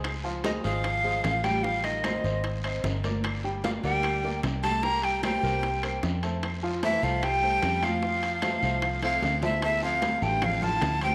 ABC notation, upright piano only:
X:1
M:4/4
L:1/8
Q:1/4=150
K:F
V:1 name="Upright piano"
[_A,_Ac] [F,Ff] [A,Ac] [A,Ac]2 [A,Ac]2 [G,Gg] | [G,Gg]2 [Cc_e] [Cce]2 [Cce]2 [B,Bd]- | [B,Bd] [G,Gg] [B,Bd] [B,Bd]2 [B,Bd]2 [G,Gg] | [G,Gg]2 [B,Bc] [B,Bc]2 [B,Bc]2 [A,Ac]- |
[A,Ac] [F,Ff] [A,Ac] [A,Ac]2 [A,Ac]2 [F,Ff] | [F,Ff]2 [A,Ac] [A,Ac]2 [A,Ac]2 [A,Ac] | [K:Dm] [A,Aa] [F,Ff]2 [A,Aa]2 [Fff']2 [Ccc'] |]